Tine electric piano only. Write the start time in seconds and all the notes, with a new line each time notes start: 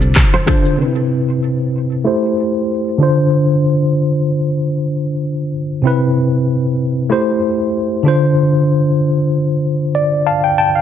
0.46 D3 D4 F4 C5
0.77 C3 C4 D4
0.82 B4
0.86 E4
2.04 A3 E4 G4 C5
2.98 D3 D4 F4
3.03 C5
5.82 C3 C4 E4
5.87 B4
7.10 A3 E4 G4 C5
8.03 D3 D4 F4
8.08 C5
9.95 D5
10.27 F5 A5
10.44 G5
10.58 G5 A5
10.75 F5